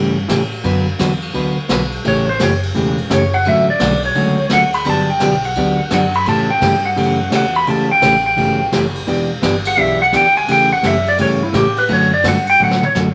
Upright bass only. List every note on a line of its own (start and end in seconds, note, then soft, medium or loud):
0.00 0.28 G2 medium
0.29 0.63 A2 loud
0.64 0.98 F#2 medium
0.99 1.33 E2 medium
1.34 1.68 D2 medium
1.69 2.03 B1 medium
2.04 2.39 A1 medium
2.40 2.74 F#1 medium
2.75 3.09 E1 medium
3.10 3.44 F#1 loud
3.45 3.79 A1 medium
3.80 4.14 B1 medium
4.15 4.49 C#2 medium
4.51 4.85 D2 loud
4.85 5.20 G1 medium
5.20 5.55 B1 medium
5.56 5.90 D2 medium
5.90 6.25 F#2 loud
6.25 6.60 A2 medium
6.61 6.95 G2 medium
6.96 7.31 F#2 medium
7.32 7.66 E2 loud
7.66 8.01 C#2 medium
8.02 8.36 A1 medium
8.37 8.71 G1 medium
8.72 9.06 F#1 loud
9.07 9.41 E1 medium
9.42 9.76 G1 medium
9.77 10.12 B1 medium
10.12 10.47 D2 medium
10.47 10.82 E2 medium
10.84 11.18 F#2 loud
11.19 11.53 G2 medium
11.54 11.88 A2 loud
11.90 12.24 F#2 loud
12.24 12.58 G2 loud
12.60 12.94 A2 loud
12.95 13.14 F#2 loud